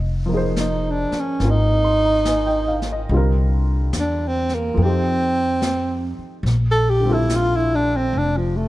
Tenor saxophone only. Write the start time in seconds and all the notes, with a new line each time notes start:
0.60 D#4
0.91 D4
1.20 C#4
1.50 D#4
3.99 D4
4.27 C4
4.54 A#3
4.83 C4
6.71 A4
6.89 G4
7.13 E4
7.36 F4
7.56 E4
7.75 D4
7.96 C4
8.18 D4
8.37 F3
8.57 A3